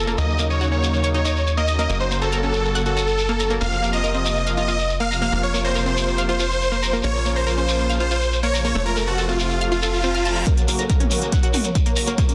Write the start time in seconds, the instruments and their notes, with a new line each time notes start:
Already playing: analog synth bass F1, supersaw synth C#3 F3 A#3 F4
0.07 synth pluck A#3, shekere
0.18 analog synth bass D#2, supersaw synth C#3 F#3 A#3 D#4 D#5, synth pluck A#3, shekere
0.29 shekere
0.39 supersaw synth C#3 F#3 A#3 D#4, synth pluck A#3, shekere
0.50 supersaw synth C#5, synth pluck D#5, shekere
0.61 supersaw synth C#3 F#3 A#3 D#4, synth pluck F#4, shekere
0.71 supersaw synth C#3 F#3 A#3 D#4 C#5, synth pluck C#4, shekere
0.82 supersaw synth C#3 F#3 A#3 D#4, shekere
0.93 shekere
1.03 supersaw synth C#3 F#3 A#3 D#4, synth pluck C#5, shekere
1.14 synth pluck D#4, supersaw synth C#5, shekere
1.25 synth pluck D#4, shekere
1.36 shekere
1.47 shekere
1.57 synth pluck A#3, supersaw synth D#5, shekere
1.67 supersaw synth C#3 F#3 A#3 D#4, synth pluck D#5, shekere
1.79 synth pluck A#3, supersaw synth D#5, shekere
1.89 analog synth bass F#1, supersaw synth C#3 F#3 A#3 F#4, synth pluck A#3, shekere
2.00 supersaw synth C5, shekere
2.11 supersaw synth C#3 F#3 A#3 F#4, synth pluck A#3, shekere
2.22 supersaw synth A4, synth pluck A#5, shekere
2.32 supersaw synth C#3 F#3 A#3 F#4, synth pluck A#4, shekere
2.43 supersaw synth C#3 F#3 A#3 F#4 A4, synth pluck C#4, shekere
2.53 supersaw synth C#3 F#3 A#3 F#4, shekere
2.65 shekere
2.75 supersaw synth C#3 F#3 A#3 F#4, synth pluck F#5, shekere
2.86 synth pluck F#4, supersaw synth A4, shekere
2.97 synth pluck F#4, shekere
3.07 shekere
3.18 shekere
3.28 synth pluck A#3, shekere
3.39 supersaw synth C#3 F#3 A#3 F#4, synth pluck A#5, shekere
3.50 synth pluck A#3, shekere
3.61 analog synth bass F1, supersaw synth C3 F3 A#3 F4 F5, synth pluck A#3, shekere
3.72 shekere
3.82 supersaw synth C3 F3 A#3 F4, synth pluck A#3, shekere
3.93 supersaw synth D#5, synth pluck A#5, shekere
4.04 supersaw synth C3 F3 A#3 F4, synth pluck A#4, shekere
4.13 supersaw synth C3 F3 A#3 F4 D#5, synth pluck C4, shekere
4.25 supersaw synth C3 F3 A#3 F4, shekere
4.36 shekere
4.46 supersaw synth C3 F3 A#3 F4, synth pluck F5, shekere
4.57 synth pluck F4, supersaw synth D#5, shekere
4.68 synth pluck F4, shekere
4.79 shekere
4.89 shekere
5.00 synth pluck A#3, supersaw synth F5, shekere
5.11 supersaw synth C3 F3 A#3 F4, synth pluck A#5, shekere
5.22 synth pluck A#3, supersaw synth F5, shekere
5.32 analog synth bass F1, supersaw synth C3 F3 A#3 F4, synth pluck A#3, shekere
5.43 supersaw synth C#5, shekere
5.54 supersaw synth C3 F3 A#3 F4, synth pluck A#3, shekere
5.64 supersaw synth C5, synth pluck A#5, shekere
5.75 supersaw synth C3 F3 A#3 F4, synth pluck A#4, shekere
5.86 supersaw synth C3 F3 A#3 F4 C5, synth pluck C4, shekere
5.97 supersaw synth C3 F3 A#3 F4, shekere
6.07 shekere
6.18 supersaw synth C3 F3 A#3 F4, synth pluck F5, shekere
6.29 synth pluck F4, supersaw synth C5, shekere
6.39 synth pluck F4, shekere
6.51 shekere
6.61 shekere
6.72 synth pluck A#3, shekere
6.82 supersaw synth C3 F3 A#3 F4, synth pluck A#5, shekere
6.93 synth pluck A#3, shekere
7.03 analog synth bass A#1, supersaw synth C#3 F3 A#3 F4 C#5, synth pluck A#3, shekere
7.15 shekere
7.25 supersaw synth C#3 F3 A#3 F4, synth pluck A#3, shekere
7.36 supersaw synth C5, synth pluck A#5, shekere
7.47 supersaw synth C#3 F3 A#3 F4, synth pluck A#4, shekere
7.57 supersaw synth C#3 F3 A#3 F4 C5, synth pluck C#4, shekere
7.68 supersaw synth C#3 F3 A#3 F4, shekere
7.78 shekere
7.89 supersaw synth C#3 F3 A#3 F4, synth pluck F5, shekere
7.99 synth pluck F4, supersaw synth C5, shekere
8.11 synth pluck F4, shekere
8.22 shekere
8.32 shekere
8.43 synth pluck A#3, supersaw synth C#5, shekere
8.54 supersaw synth C#3 F3 A#3 F4, synth pluck A#5, shekere
8.65 synth pluck A#3, supersaw synth C#5, shekere
8.75 analog synth bass F1, supersaw synth C3 F3 A3 F4, synth pluck A3, shekere
8.86 supersaw synth A#4, shekere
8.96 supersaw synth C3 F3 A3 F4, synth pluck A3, shekere
9.07 supersaw synth F#4, synth pluck A5, shekere
9.18 supersaw synth C3 F3 A3 F4, synth pluck A4, shekere
9.29 supersaw synth C3 F3 A3 F4, synth pluck C4, shekere
9.40 supersaw synth C3 F3 A3 F4, shekere
9.50 shekere
9.61 supersaw synth C3 F3 A3 F4, synth pluck F5, reverse cymbal, shekere
9.72 supersaw synth F4, synth pluck F4, shekere
9.82 synth pluck A4, shekere
9.94 shekere
10.03 synth pluck C4, shekere
10.15 synth pluck F5, shekere
10.25 supersaw synth C3 F3 A3 F4, synth pluck A5, shekere
10.36 synth pluck F5, shekere
10.47 supersaw synth C#3 F#3 A#3 F#4 A#4 C#5, synth pluck A#3, kick, closed hi-hat, shekere
10.57 closed hi-hat, shekere
10.68 analog synth bass F#1, supersaw synth C#3 F#3 A#3 F#4, synth pluck A#3, open hi-hat, shekere
10.79 analog synth bass F#1, supersaw synth A4 C5, synth pluck A#5, closed hi-hat, shekere
10.89 supersaw synth C#3 F#3 A#3 F#4, synth pluck A#4, kick, closed hi-hat, shekere
11.00 supersaw synth C#3 F#3 A#3 F#4 A#4 C#5, synth pluck C#4, closed hi-hat, mid tom, shekere
11.11 analog synth bass F#1, supersaw synth C#3 F#3 A#3 F#4, open hi-hat, shekere
11.22 analog synth bass F#1, closed hi-hat, shekere
11.32 supersaw synth C#3 F#3 A#3 F#4, synth pluck F#5, kick, closed hi-hat, shekere
11.43 synth pluck F#4, supersaw synth A#4 C#5, closed hi-hat, shekere
11.53 analog synth bass F#1, synth pluck F#4, open hi-hat, mid tom, shekere
11.64 analog synth bass C#2, closed hi-hat, shekere
11.75 kick, closed hi-hat, shekere
11.86 synth pluck A#3, supersaw synth A#4 C#5, closed hi-hat, shekere
11.96 analog synth bass F#1, supersaw synth C#3 F#3 A#3 F#4, synth pluck A#5, open hi-hat, shekere
12.07 analog synth bass F#1, synth pluck A#3, supersaw synth A#4 C#5, closed hi-hat, shekere
12.18 supersaw synth C#3 F3 A#3 F4, synth pluck A#3, kick, closed hi-hat, shekere
12.28 supersaw synth C#4 A#4, closed hi-hat, shekere